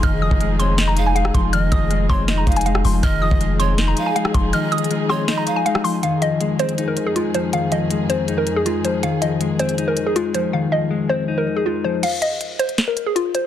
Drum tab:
CC |------------------------------------------------------------------------------------------------|------------------------------------------------------------------------------------------------|------------------------------------------------------------------------------------------------|------------------------------------------------------------------------------------------------|
HH |x-----------------------x-----------x-----------x-----------x-----------x-----------x-----------|x-----------x-----------x-----------------------x-----------x--x--x--x--x-----------o-----------|x-----------------------x-----------x-----------x-----------x-----------x-----------x-----------|x-----------x---x---x---x-----------------------x-----------x-----------x-----------o-----------|
SD |------------------------------------------------o-----------------------------r-----------------|------------------------------------------------o-----------------------------r-----------------|------------------------------------------------o-----------------------------r-----------------|------------------------------------r-----------o-----------------------------r-----------------|
BD |o-----------------o-----------------------------------------------------------------o-----------|------------o-----------------------o-----------------------o-----------------------------------|o-----------------o-----------------------------------------------------------------o-----------|------------------------------------------------------------------------------------------------|

CC |------------------------------------------------------------------------------------------------|------------------------------------------------------------------------------------------------|------------------------------------------------------------------------------------------------|------------------------------------------------------------------------------------------------|
HH |x-----------x-----------x-----------x-----x-----x-----------x-----------x-----------x-----------|x-----------x-----------x-----------x-----------x-----------x-----------x-----------x-----------|x-----------x-----------x-----------x-----x-----x-----------x-----------x-----------x-----------|------------------------------------------------------------------------------------------------|
SD |------------------------------------------------------------------------------------------------|------------------------------------------------------------------------------------------------|------------------------------------------------------------------------------------------------|------------------------------------------------------------------------------------------------|
BD |------------------------------------------------------------------------------------------------|------------------------------------------------------------------------------------------------|------------------------------------------------------------------------------------------------|------------------------------------------------------------------------------------------------|

CC |x-----------------------------------------------------------------------------------------------|
HH |x-----------x-----------x-----------x-----x-----x-----------x-----------x-----------x-----------|
SD |------------------------------------------------o-----------------------------------------------|
BD |------------------------------------------------------------------------------------------------|